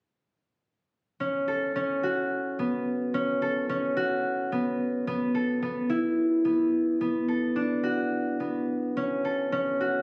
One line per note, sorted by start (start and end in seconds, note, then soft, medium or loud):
1.20 1.75 C#4 medium
1.48 3.41 A4 medium
1.76 3.14 C#4 medium
2.03 3.96 F#4 medium
2.59 4.52 B3 medium
3.14 3.69 C#4 medium
3.42 5.34 A4 medium
3.69 6.59 C#4 medium
3.97 6.40 F#4 medium
4.52 5.07 B3 medium
5.07 5.62 B3 medium
5.35 7.28 A4 medium
5.62 6.44 B3 medium
5.90 8.51 E4 medium
6.45 7.00 B3 medium
7.01 8.40 B3 medium
7.28 9.24 A4 medium
7.56 9.03 D4 medium
7.83 9.80 F#4 medium
8.40 10.02 B3 medium
8.97 9.52 C#4 medium
9.25 10.02 A4 medium
9.52 10.02 C#4 medium
9.81 10.02 F#4 medium